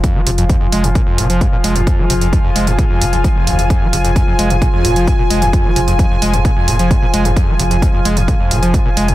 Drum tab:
HH |x-oxx-oxx-oxx-ox|x-oxx-oxx-oxx-ox|x-oxx-oxx-oxx-ox|x-oxx-oxx-oxx-ox|
BD |o---o---o---o---|o---o---o---o---|o---o---o---o---|o---o---o---o---|

HH |x-oxx-oxx-oxx-ox|
BD |o---o---o---o---|